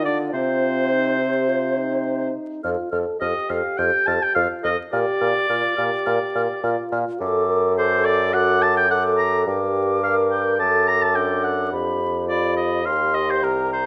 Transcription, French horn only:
0, 0, Header, 1, 2, 480
1, 0, Start_track
1, 0, Key_signature, -2, "major"
1, 0, Tempo, 573066
1, 280, Time_signature, 4, 2, 24, 8
1, 5077, Tempo, 564972
1, 6047, Key_signature, -2, "minor"
1, 9397, Tempo, 574163
1, 11667, End_track
2, 0, Start_track
2, 0, Title_t, "French horn"
2, 0, Program_c, 0, 60
2, 0, Note_on_c, 0, 65, 49
2, 770, Note_on_c, 0, 63, 47
2, 782, Note_off_c, 0, 65, 0
2, 999, Note_on_c, 0, 67, 52
2, 1011, Note_off_c, 0, 63, 0
2, 1242, Note_on_c, 0, 65, 52
2, 1255, Note_off_c, 0, 67, 0
2, 1480, Note_off_c, 0, 65, 0
2, 1485, Note_on_c, 0, 63, 55
2, 2194, Note_off_c, 0, 63, 0
2, 2213, Note_on_c, 0, 65, 55
2, 2445, Note_off_c, 0, 65, 0
2, 2450, Note_on_c, 0, 69, 58
2, 2681, Note_off_c, 0, 69, 0
2, 2686, Note_on_c, 0, 67, 66
2, 3647, Note_on_c, 0, 65, 58
2, 3660, Note_off_c, 0, 67, 0
2, 3955, Note_off_c, 0, 65, 0
2, 4127, Note_on_c, 0, 67, 74
2, 4570, Note_off_c, 0, 67, 0
2, 4603, Note_on_c, 0, 65, 59
2, 4837, Note_off_c, 0, 65, 0
2, 4841, Note_on_c, 0, 67, 70
2, 5548, Note_off_c, 0, 67, 0
2, 5567, Note_on_c, 0, 65, 62
2, 6048, Note_on_c, 0, 69, 74
2, 6061, Note_off_c, 0, 65, 0
2, 6290, Note_off_c, 0, 69, 0
2, 6296, Note_on_c, 0, 70, 76
2, 6535, Note_on_c, 0, 69, 68
2, 6548, Note_off_c, 0, 70, 0
2, 7013, Note_on_c, 0, 66, 63
2, 7026, Note_off_c, 0, 69, 0
2, 7480, Note_off_c, 0, 66, 0
2, 7485, Note_on_c, 0, 69, 70
2, 7970, Note_on_c, 0, 67, 69
2, 7983, Note_off_c, 0, 69, 0
2, 8436, Note_off_c, 0, 67, 0
2, 8441, Note_on_c, 0, 70, 72
2, 8910, Note_off_c, 0, 70, 0
2, 8922, Note_on_c, 0, 69, 62
2, 9259, Note_off_c, 0, 69, 0
2, 9400, Note_on_c, 0, 62, 55
2, 10111, Note_off_c, 0, 62, 0
2, 10355, Note_on_c, 0, 65, 56
2, 10796, Note_off_c, 0, 65, 0
2, 10822, Note_on_c, 0, 67, 57
2, 11667, Note_off_c, 0, 67, 0
2, 11667, End_track
0, 0, End_of_file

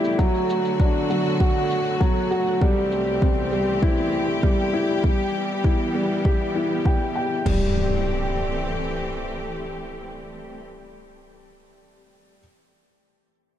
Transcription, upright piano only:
0, 0, Header, 1, 2, 480
1, 0, Start_track
1, 0, Tempo, 606061
1, 148, Time_signature, 4, 2, 24, 8
1, 10762, End_track
2, 0, Start_track
2, 0, Title_t, "Upright piano"
2, 0, Program_c, 0, 0
2, 0, Control_c, 0, 64, 127
2, 0, Note_on_c, 0, 55, 82
2, 0, Note_on_c, 0, 60, 65
2, 0, Note_on_c, 0, 64, 90
2, 149, Note_on_c, 0, 54, 88
2, 158, Control_c, 0, 64, 0
2, 162, Note_off_c, 0, 55, 0
2, 164, Note_off_c, 0, 60, 0
2, 165, Note_off_c, 0, 64, 0
2, 285, Note_off_c, 0, 54, 0
2, 292, Control_c, 0, 64, 127
2, 630, Note_on_c, 0, 62, 60
2, 857, Note_off_c, 0, 62, 0
2, 869, Note_on_c, 0, 54, 63
2, 1005, Note_off_c, 0, 54, 0
2, 1110, Note_on_c, 0, 66, 85
2, 1337, Note_off_c, 0, 66, 0
2, 1587, Note_on_c, 0, 54, 85
2, 1724, Note_off_c, 0, 54, 0
2, 1827, Note_on_c, 0, 66, 86
2, 1964, Note_off_c, 0, 66, 0
2, 2069, Note_on_c, 0, 55, 90
2, 2078, Control_c, 0, 64, 0
2, 2202, Control_c, 0, 64, 127
2, 2205, Note_off_c, 0, 55, 0
2, 2547, Note_on_c, 0, 60, 59
2, 2776, Note_off_c, 0, 60, 0
2, 2787, Note_on_c, 0, 55, 67
2, 2924, Note_off_c, 0, 55, 0
2, 3028, Note_on_c, 0, 64, 84
2, 3256, Note_off_c, 0, 64, 0
2, 3509, Note_on_c, 0, 55, 79
2, 3645, Note_off_c, 0, 55, 0
2, 3749, Note_on_c, 0, 64, 83
2, 3885, Note_off_c, 0, 64, 0
2, 3989, Note_on_c, 0, 55, 80
2, 3999, Control_c, 0, 64, 0
2, 4125, Note_off_c, 0, 55, 0
2, 4126, Control_c, 0, 64, 127
2, 4469, Note_on_c, 0, 64, 58
2, 4697, Note_off_c, 0, 64, 0
2, 4709, Note_on_c, 0, 55, 60
2, 4845, Note_off_c, 0, 55, 0
2, 4948, Note_on_c, 0, 67, 80
2, 5176, Note_off_c, 0, 67, 0
2, 5189, Note_on_c, 0, 64, 61
2, 5417, Note_off_c, 0, 64, 0
2, 5427, Note_on_c, 0, 79, 58
2, 5655, Note_off_c, 0, 79, 0
2, 5667, Note_on_c, 0, 79, 62
2, 5895, Note_off_c, 0, 79, 0
2, 5906, Note_on_c, 0, 55, 78
2, 5916, Control_c, 0, 64, 0
2, 6071, Control_c, 0, 64, 127
2, 6130, Note_off_c, 0, 55, 0
2, 9818, Control_c, 0, 64, 0
2, 10762, End_track
0, 0, End_of_file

